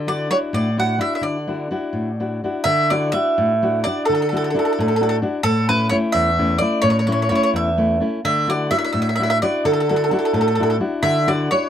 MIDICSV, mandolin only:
0, 0, Header, 1, 2, 480
1, 0, Start_track
1, 0, Key_signature, 2, "major"
1, 0, Tempo, 472069
1, 1233, Time_signature, 6, 3, 24, 8
1, 4130, Tempo, 464037
1, 12021, End_track
2, 0, Start_track
2, 0, Title_t, "Mandolin"
2, 0, Program_c, 0, 25
2, 83, Note_on_c, 0, 74, 92
2, 286, Note_off_c, 0, 74, 0
2, 312, Note_on_c, 0, 73, 92
2, 371, Note_off_c, 0, 73, 0
2, 553, Note_on_c, 0, 74, 86
2, 771, Note_off_c, 0, 74, 0
2, 809, Note_on_c, 0, 78, 89
2, 1006, Note_off_c, 0, 78, 0
2, 1025, Note_on_c, 0, 76, 81
2, 1158, Note_off_c, 0, 76, 0
2, 1170, Note_on_c, 0, 76, 54
2, 1236, Note_off_c, 0, 76, 0
2, 1250, Note_on_c, 0, 74, 73
2, 2185, Note_off_c, 0, 74, 0
2, 2683, Note_on_c, 0, 76, 104
2, 2951, Note_on_c, 0, 74, 87
2, 2953, Note_off_c, 0, 76, 0
2, 3168, Note_off_c, 0, 74, 0
2, 3172, Note_on_c, 0, 76, 99
2, 3852, Note_off_c, 0, 76, 0
2, 3903, Note_on_c, 0, 74, 84
2, 4115, Note_off_c, 0, 74, 0
2, 4123, Note_on_c, 0, 69, 72
2, 4201, Note_off_c, 0, 69, 0
2, 4217, Note_on_c, 0, 69, 57
2, 4281, Note_off_c, 0, 69, 0
2, 4294, Note_on_c, 0, 69, 56
2, 4353, Note_off_c, 0, 69, 0
2, 4366, Note_on_c, 0, 69, 51
2, 4433, Note_off_c, 0, 69, 0
2, 4445, Note_on_c, 0, 69, 63
2, 4514, Note_off_c, 0, 69, 0
2, 4524, Note_on_c, 0, 69, 50
2, 4575, Note_off_c, 0, 69, 0
2, 4587, Note_on_c, 0, 69, 50
2, 4658, Note_off_c, 0, 69, 0
2, 4676, Note_on_c, 0, 69, 48
2, 4727, Note_off_c, 0, 69, 0
2, 4739, Note_on_c, 0, 69, 54
2, 4807, Note_off_c, 0, 69, 0
2, 4818, Note_on_c, 0, 69, 47
2, 4886, Note_off_c, 0, 69, 0
2, 4898, Note_on_c, 0, 69, 50
2, 4966, Note_off_c, 0, 69, 0
2, 4978, Note_on_c, 0, 69, 48
2, 5047, Note_off_c, 0, 69, 0
2, 5062, Note_on_c, 0, 69, 57
2, 5119, Note_off_c, 0, 69, 0
2, 5131, Note_on_c, 0, 69, 47
2, 5181, Note_off_c, 0, 69, 0
2, 5193, Note_on_c, 0, 69, 66
2, 5264, Note_off_c, 0, 69, 0
2, 5549, Note_on_c, 0, 69, 115
2, 5808, Note_off_c, 0, 69, 0
2, 5812, Note_on_c, 0, 71, 100
2, 6022, Note_off_c, 0, 71, 0
2, 6026, Note_on_c, 0, 73, 98
2, 6091, Note_off_c, 0, 73, 0
2, 6263, Note_on_c, 0, 76, 96
2, 6718, Note_off_c, 0, 76, 0
2, 6740, Note_on_c, 0, 74, 96
2, 6975, Note_off_c, 0, 74, 0
2, 6979, Note_on_c, 0, 73, 106
2, 7054, Note_off_c, 0, 73, 0
2, 7067, Note_on_c, 0, 73, 77
2, 7144, Note_off_c, 0, 73, 0
2, 7160, Note_on_c, 0, 73, 69
2, 7227, Note_off_c, 0, 73, 0
2, 7240, Note_on_c, 0, 73, 65
2, 7284, Note_off_c, 0, 73, 0
2, 7297, Note_on_c, 0, 73, 68
2, 7370, Note_off_c, 0, 73, 0
2, 7400, Note_on_c, 0, 73, 58
2, 7460, Note_off_c, 0, 73, 0
2, 7471, Note_on_c, 0, 73, 70
2, 7523, Note_off_c, 0, 73, 0
2, 7536, Note_on_c, 0, 73, 68
2, 7602, Note_off_c, 0, 73, 0
2, 7618, Note_on_c, 0, 73, 78
2, 7681, Note_off_c, 0, 73, 0
2, 7749, Note_on_c, 0, 76, 81
2, 8251, Note_off_c, 0, 76, 0
2, 8462, Note_on_c, 0, 76, 96
2, 8698, Note_off_c, 0, 76, 0
2, 8718, Note_on_c, 0, 74, 83
2, 8936, Note_on_c, 0, 76, 90
2, 8957, Note_off_c, 0, 74, 0
2, 9003, Note_off_c, 0, 76, 0
2, 9016, Note_on_c, 0, 76, 66
2, 9065, Note_off_c, 0, 76, 0
2, 9078, Note_on_c, 0, 76, 71
2, 9149, Note_off_c, 0, 76, 0
2, 9161, Note_on_c, 0, 76, 63
2, 9238, Note_off_c, 0, 76, 0
2, 9256, Note_on_c, 0, 76, 63
2, 9320, Note_off_c, 0, 76, 0
2, 9332, Note_on_c, 0, 76, 53
2, 9387, Note_off_c, 0, 76, 0
2, 9399, Note_on_c, 0, 76, 68
2, 9467, Note_off_c, 0, 76, 0
2, 9479, Note_on_c, 0, 76, 60
2, 9536, Note_off_c, 0, 76, 0
2, 9548, Note_on_c, 0, 76, 84
2, 9621, Note_off_c, 0, 76, 0
2, 9673, Note_on_c, 0, 74, 86
2, 9890, Note_off_c, 0, 74, 0
2, 9913, Note_on_c, 0, 69, 73
2, 9984, Note_off_c, 0, 69, 0
2, 9997, Note_on_c, 0, 69, 55
2, 10056, Note_off_c, 0, 69, 0
2, 10069, Note_on_c, 0, 69, 57
2, 10142, Note_off_c, 0, 69, 0
2, 10163, Note_on_c, 0, 69, 56
2, 10222, Note_off_c, 0, 69, 0
2, 10235, Note_on_c, 0, 69, 61
2, 10297, Note_off_c, 0, 69, 0
2, 10312, Note_on_c, 0, 69, 53
2, 10373, Note_off_c, 0, 69, 0
2, 10388, Note_on_c, 0, 69, 51
2, 10448, Note_off_c, 0, 69, 0
2, 10466, Note_on_c, 0, 69, 49
2, 10520, Note_off_c, 0, 69, 0
2, 10533, Note_on_c, 0, 69, 57
2, 10593, Note_off_c, 0, 69, 0
2, 10625, Note_on_c, 0, 69, 47
2, 10680, Note_off_c, 0, 69, 0
2, 10694, Note_on_c, 0, 69, 56
2, 10756, Note_off_c, 0, 69, 0
2, 10766, Note_on_c, 0, 69, 53
2, 10831, Note_off_c, 0, 69, 0
2, 10845, Note_on_c, 0, 69, 56
2, 10908, Note_off_c, 0, 69, 0
2, 10924, Note_on_c, 0, 69, 54
2, 10982, Note_off_c, 0, 69, 0
2, 10996, Note_on_c, 0, 69, 54
2, 11054, Note_off_c, 0, 69, 0
2, 11334, Note_on_c, 0, 76, 103
2, 11594, Note_off_c, 0, 76, 0
2, 11597, Note_on_c, 0, 74, 82
2, 11808, Note_off_c, 0, 74, 0
2, 11833, Note_on_c, 0, 73, 95
2, 12021, Note_off_c, 0, 73, 0
2, 12021, End_track
0, 0, End_of_file